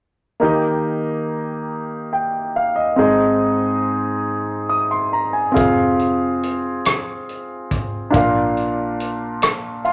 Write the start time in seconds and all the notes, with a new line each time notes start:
0.40 D#3 A#3 D#4 G4
0.45 D#5
2.13 G5
2.56 F5
2.76 D#5
2.96 G#2 C4 D#4 G#4
3.01 D#5
4.69 D#6
4.91 C6
5.13 A#5
5.33 G#5
5.52 C4 F4 G#4
5.56 F1 F5, kick, closed hi-hat
5.99 closed hi-hat
6.43 closed hi-hat
6.85 cross-stick, closed hi-hat
7.29 closed hi-hat
7.71 kick, closed hi-hat
8.10 A#1 A#2 D4 F4 A#4, kick, closed hi-hat
8.16 F5
8.57 closed hi-hat
9.00 closed hi-hat
9.42 cross-stick, closed hi-hat
9.85 F5 C6, closed hi-hat